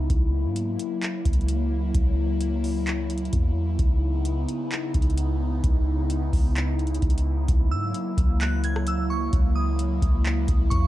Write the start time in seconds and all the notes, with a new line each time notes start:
Already playing: E4
0.10 C#2 F#3 A#3, kick, closed hi-hat
0.45 G#2
0.56 closed hi-hat
0.79 closed hi-hat
1.02 clap, closed hi-hat
1.25 C#2, kick, closed hi-hat
1.33 closed hi-hat
1.41 closed hi-hat
1.48 closed hi-hat
1.95 C#2, kick, closed hi-hat
2.41 closed hi-hat
2.64 open hi-hat
2.87 clap, closed hi-hat
3.10 closed hi-hat
3.18 closed hi-hat
3.25 closed hi-hat
3.33 E2, kick, closed hi-hat
3.79 C#2 C#3 B3 D#4, kick, closed hi-hat
4.25 closed hi-hat
4.49 closed hi-hat
4.72 clap, closed hi-hat
4.94 C#2, kick, closed hi-hat
5.02 closed hi-hat
5.10 closed hi-hat
5.17 closed hi-hat
5.64 C#2, kick, closed hi-hat
6.10 closed hi-hat
6.33 C#2, kick, open hi-hat
6.56 clap, closed hi-hat
6.79 closed hi-hat
6.87 closed hi-hat
6.95 closed hi-hat
7.02 C#2, kick, closed hi-hat
7.10 closed hi-hat
7.18 closed hi-hat
7.48 C#2 F#3 A#3 E4, kick, closed hi-hat
7.71 G#2 E6
7.94 closed hi-hat
8.18 C#2, kick, closed hi-hat
8.41 F#6, clap, closed hi-hat
8.64 G#6, closed hi-hat
8.76 cross-stick
8.87 E6, closed hi-hat
9.10 C#6
9.33 C#2, kick, closed hi-hat
9.55 D#6
9.79 closed hi-hat
10.02 C#2, kick, closed hi-hat
10.25 clap, closed hi-hat
10.48 C#2, kick, closed hi-hat
10.70 E2 C#6, kick, closed hi-hat